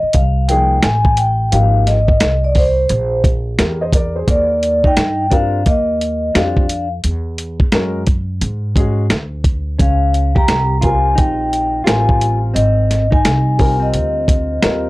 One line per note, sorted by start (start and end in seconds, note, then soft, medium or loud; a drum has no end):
0.00 0.16 D#5 loud
0.00 muted upright bass stroke soft
0.13 0.80 C2 medium
0.13 0.46 F5 medium
0.13 kick loud
0.13 closed hi-hat medium
0.49 0.76 F3 medium
0.49 0.76 A#3 medium
0.49 0.77 D#4 medium
0.49 0.77 G#4 medium
0.49 0.84 G5 loud
0.49 closed hi-hat medium
0.83 1.49 A1 medium
0.83 1.15 G#5 loud
0.83 snare loud
0.83 closed hi-hat medium
1.05 kick medium
1.17 1.53 G5 loud
1.17 closed hi-hat medium
1.52 2.18 G#1 loud
1.52 1.95 F3 medium
1.52 1.96 A#3 medium
1.52 1.96 D#4 medium
1.52 1.96 G4 medium
1.52 1.88 F5 loud
1.52 closed hi-hat loud
1.87 2.46 D#5 medium
1.87 snare soft
1.87 closed hi-hat medium
2.08 kick loud
2.20 2.87 C2 loud
2.20 snare loud
2.20 closed hi-hat medium
2.44 2.56 D5 medium
2.55 3.21 C5 medium
2.55 kick loud
2.55 open hi-hat soft
2.89 3.56 A#1 loud
2.89 closed hi-hat medium
3.24 kick loud
3.24 closed hi-hat medium
3.59 4.25 E2 loud
3.59 3.80 G4 medium
3.59 3.80 A#4 medium
3.59 snare loud
3.59 closed hi-hat medium
3.81 3.93 C5 medium
3.81 3.93 D#5 medium
3.93 4.15 A#4 medium
3.93 4.15 D5 medium
3.93 kick loud
3.93 closed hi-hat medium
4.16 4.49 G#4 medium
4.16 4.49 C5 medium
4.28 4.94 D#2 loud
4.28 4.81 A#3 medium
4.28 4.88 D5 medium
4.28 kick loud
4.28 closed hi-hat medium
4.63 closed hi-hat medium
4.84 5.28 D#4 medium
4.84 5.29 G5 loud
4.84 kick medium
4.97 5.62 G2 medium
4.97 snare loud
4.97 closed hi-hat medium
5.30 5.58 G3 medium
5.30 5.59 C4 medium
5.30 5.63 D4 medium
5.30 5.59 F4 medium
5.30 5.59 A#4 medium
5.30 5.67 F5 medium
5.30 kick medium
5.30 closed hi-hat medium
5.66 6.32 D#2 medium
5.66 6.31 A#3 medium
5.66 6.38 D#5 medium
5.66 kick medium
5.66 closed hi-hat medium
6.01 closed hi-hat medium
6.34 7.01 F2 medium
6.34 6.62 G3 medium
6.34 6.62 C4 medium
6.34 6.87 D4 medium
6.34 6.63 F4 medium
6.34 6.63 G4 medium
6.34 6.88 F5 medium
6.34 snare loud
6.34 closed hi-hat medium
6.57 kick medium
6.69 closed hi-hat medium
7.04 7.70 E2 medium
7.04 closed hi-hat medium
7.38 closed hi-hat medium
7.60 kick medium
7.72 8.38 F#2 medium
7.72 8.00 G#3 medium
7.72 8.01 C#4 medium
7.72 8.01 F#4 medium
7.72 8.01 A#4 medium
7.72 snare loud
7.72 closed hi-hat medium
8.07 kick medium
8.07 closed hi-hat medium
8.41 9.07 G#2 loud
8.41 closed hi-hat medium
8.76 9.03 G#3 medium
8.76 9.03 C#4 medium
8.76 9.04 F#4 medium
8.76 9.04 G#4 medium
8.76 kick loud
8.76 closed hi-hat medium
9.10 9.77 D2 medium
9.10 snare loud
9.10 closed hi-hat medium
9.44 kick medium
9.44 closed hi-hat medium
9.79 10.45 C#2 loud
9.79 10.32 C#4 medium
9.79 10.39 F5 medium
9.79 kick loud
9.79 closed hi-hat medium
10.14 closed hi-hat medium
10.35 10.79 G4 medium
10.35 10.85 A#5 loud
10.35 kick loud
10.48 11.18 C2 loud
10.48 snare loud
10.48 closed hi-hat medium
10.81 11.82 G3 medium
10.81 11.82 C4 medium
10.81 11.14 F4 medium
10.81 11.83 F4 medium
10.81 11.16 G#5 loud
10.81 kick medium
10.81 closed hi-hat medium
10.85 11.83 A#4 medium
11.15 11.83 A#1 loud
11.15 11.81 D#4 medium
11.15 11.82 G5 medium
11.15 kick medium
11.15 closed hi-hat medium
11.53 closed hi-hat medium
11.84 12.52 A1 medium
11.84 12.55 G3 medium
11.84 12.55 C4 medium
11.84 11.95 E4 medium
11.84 12.38 F4 medium
11.84 12.56 A#4 medium
11.84 12.39 G#5 loud
11.84 snare loud
11.84 closed hi-hat medium
11.93 12.59 F4 medium
12.09 kick medium
12.21 closed hi-hat medium
12.54 13.21 G#1 loud
12.54 13.07 C4 medium
12.54 13.14 D#5 medium
12.54 closed hi-hat medium
12.91 snare soft
12.91 closed hi-hat medium
13.11 13.77 D#4 medium
13.11 13.84 G#5 medium
13.11 kick medium
13.25 13.90 C2 medium
13.25 snare loud
13.25 closed hi-hat medium
13.58 14.57 G3 medium
13.58 14.58 C4 medium
13.58 14.58 F4 medium
13.58 14.58 A#4 medium
13.58 kick medium
13.58 open hi-hat soft
13.80 14.89 C4 medium
13.80 14.89 D#5 medium
13.94 14.59 D2 medium
13.94 closed hi-hat medium
14.28 kick loud
14.28 closed hi-hat medium
14.62 14.89 D#2 medium
14.62 14.89 G3 medium
14.62 14.89 C4 medium
14.62 14.89 F4 medium
14.62 14.89 A#4 medium
14.62 snare loud
14.62 closed hi-hat medium